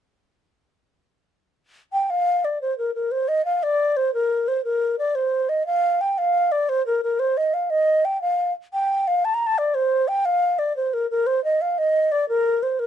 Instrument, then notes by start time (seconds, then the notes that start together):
flute
1.93 G5
2.10 F5
2.45 D5
2.61 C5
2.78 A#4
2.95 A#4
3.11 C5
3.28 D#5
3.45 F5
3.63 D5
3.97 C5
4.14 A#4
4.48 C5
4.64 A#4
4.99 D5
5.15 C5
5.49 D#5
5.66 F5
6.01 G5
6.18 F5
6.52 D5
6.69 C5
6.86 A#4
7.03 A#4
7.19 C5
7.37 D#5
7.54 F5
7.70 D#5
8.05 G5
8.22 F5
8.73 G5
9.08 F5
9.25 A5
9.34 A#5
9.47 A5
9.58 D5
9.75 C5
10.08 G5
10.25 F5
10.59 D5
10.76 C5
10.94 A#4
11.11 A#4
11.27 C5
11.44 D#5
11.61 F5
11.78 D#5
12.12 D5
12.29 A#4
12.63 C5
12.79 A#4